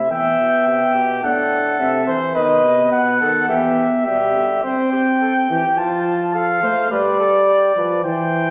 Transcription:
0.10 0.38 E3 medium
0.10 1.21 B3 medium
0.10 0.94 E5 loud
0.10 0.66 G5 medium
0.38 0.66 B2 medium
0.67 0.79 C3 medium
0.67 1.25 G5 medium
0.95 1.22 B2 medium
0.95 1.23 G4 medium
1.23 1.78 A2 medium
1.23 1.81 D4 medium
1.23 2.06 A4 medium
1.23 1.79 F#5 medium
1.79 2.07 C3 medium
1.79 2.16 C4 medium
1.79 2.15 E5 medium
2.07 2.35 E3 medium
2.07 2.35 C5 medium
2.35 2.63 D#3 medium
2.35 3.45 B3 medium
2.35 3.19 B4 loud
2.35 2.88 D#5 medium
2.64 2.94 C3 medium
2.92 3.20 B2 medium
2.92 3.48 F#5 medium
3.20 3.49 D#3 medium
3.20 3.48 A4 medium
3.49 3.85 E3 medium
3.49 4.05 B3 medium
3.49 3.85 G4 medium
3.49 4.05 E5 medium
4.06 4.37 B2 medium
4.06 4.63 G3 medium
4.06 4.60 G4 medium
4.06 4.63 E5 medium
4.35 4.64 D3 medium
4.64 5.46 C4 loud
4.64 4.91 C5 medium
4.64 5.79 G5 medium
4.93 5.06 G4 medium
5.21 5.34 A4 medium
5.50 5.62 E3 medium
5.50 5.78 G4 medium
5.77 6.61 F3 loud
5.77 6.36 F4 medium
5.77 6.34 A5 medium
6.34 6.62 A4 medium
6.34 6.90 F5 medium
6.62 6.91 A3 medium
6.62 6.91 C5 medium
6.91 7.74 G3 loud
6.91 7.19 B4 medium
6.91 8.02 D5 medium
7.20 7.32 A4 medium
7.48 7.76 G4 medium
7.75 8.03 F3 medium
7.75 8.04 B4 medium
8.04 8.50 E3 medium
8.04 8.50 C5 medium
8.04 8.50 G5 medium

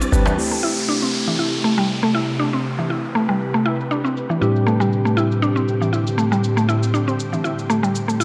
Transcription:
0.01 0.12 C4 medium
0.01 shaker medium
0.12 0.29 G1 medium
0.12 0.35 G3 medium
0.12 0.35 C4 medium
0.12 0.35 D4 medium
0.12 0.35 B4 loud
0.12 djembe tone medium
0.12 shaker medium
0.26 0.37 E3 medium
0.26 djembe slap loud
0.26 shaker medium
0.38 4.37 C3 medium
0.38 4.38 A3 medium
0.38 2.38 A3 medium
0.38 4.38 C4 medium
0.38 4.38 E4 medium
0.38 4.38 G4 medium
0.38 8.24 G4 medium
0.38 downlifter medium
0.51 0.58 A3 medium
0.63 0.76 E4 loud
0.89 0.96 D4 medium
1.02 1.13 C4 medium
1.28 1.38 E3 medium
1.39 1.52 E4 medium
1.64 1.72 A3 medium
1.78 1.88 G3 loud
1.90 shaker medium
2.03 2.09 A3 medium
2.15 2.28 E4 loud
2.40 2.47 D4 loud
2.40 4.39 B4 medium
2.40 shaker medium
2.53 2.64 C4 medium
2.66 shaker medium
2.79 2.90 E3 medium
2.79 shaker medium
2.90 3.03 E4 medium
2.90 shaker soft
3.05 shaker medium
3.15 3.23 A3 loud
3.15 shaker medium
3.29 3.39 G3 loud
3.29 shaker soft
3.41 shaker soft
3.54 3.60 A3 loud
3.54 shaker soft
3.66 3.79 E4 loud
3.66 shaker soft
3.80 shaker medium
3.91 3.98 D4 medium
3.91 shaker medium
4.05 4.16 C4 medium
4.05 shaker medium
4.17 shaker medium
4.30 4.41 E3 medium
4.30 shaker medium
4.41 8.24 A2 medium
4.41 8.24 D3 medium
4.41 8.24 G3 medium
4.41 8.24 C4 medium
4.41 8.24 D4 medium
4.41 4.55 E4 medium
4.41 8.24 G4 medium
4.41 shaker medium
4.56 shaker medium
4.67 4.74 A3 loud
4.67 shaker medium
4.80 4.91 G3 loud
4.80 shaker medium
4.93 shaker soft
5.05 5.12 A3 medium
5.05 shaker soft
5.17 5.30 E4 medium
5.17 shaker medium
5.32 shaker soft
5.42 5.50 D4 loud
5.42 shaker soft
5.56 5.67 C4 medium
5.56 shaker soft
5.68 shaker medium
5.82 5.92 E3 medium
5.82 shaker medium
5.93 6.06 E4 medium
5.93 shaker medium
6.07 shaker medium
6.18 6.25 A3 loud
6.18 shaker medium
6.32 6.42 G3 loud
6.32 shaker medium
6.44 shaker medium
6.57 6.63 A3 medium
6.57 shaker soft
6.69 6.82 E4 loud
6.69 shaker soft
6.83 shaker medium
6.94 7.01 D4 medium
6.94 shaker soft
7.08 7.18 C4 medium
7.08 shaker soft
7.20 shaker medium
7.33 7.44 E3 medium
7.33 shaker medium
7.44 7.57 E4 medium
7.44 shaker soft
7.59 shaker medium
7.70 7.77 A3 loud
7.70 shaker medium
7.83 7.93 G3 loud
7.83 shaker medium
7.95 shaker medium
8.08 8.14 A3 medium
8.08 shaker medium
8.20 8.24 E4 loud
8.20 shaker medium

